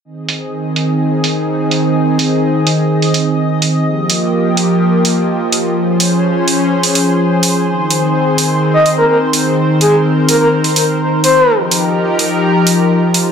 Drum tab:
HH |--o---o---o---o-|--o---o--oo---o-|--o---o---o---o-|--o---o--oo---o-|

HH |--o---o---o---o-|--o---o--oo---o-|--o---o---o---o-|